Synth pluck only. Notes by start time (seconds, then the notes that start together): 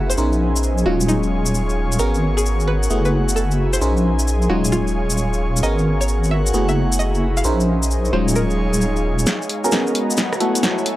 0.10 C5
0.86 F#4
1.09 D#4
1.99 A#4
2.37 G#4
2.68 B4
3.05 B4
3.36 A4
3.73 C5
4.50 F#4
4.72 F4
5.63 D#5
6.01 C#5
6.31 E5
6.69 E5
6.99 D#5
7.37 F5
8.13 C5
8.36 A#4